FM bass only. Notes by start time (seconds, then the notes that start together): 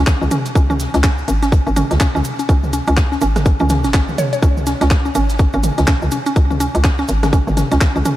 0.21 C#2
0.55 C#2
0.94 C#2
1.28 G#1
1.67 G#1
1.91 C#2
2.15 C#2
2.49 C#2
2.88 C#2
3.21 G#1
3.60 C#2
3.84 G#1
4.09 C#2
4.42 C#2
4.81 C#2
5.15 G#1
5.54 G#1
5.78 C#2
6.02 C#2
6.36 C#2
6.75 C#2
7.09 G#1
7.47 G#1
7.71 C#2
7.96 C#2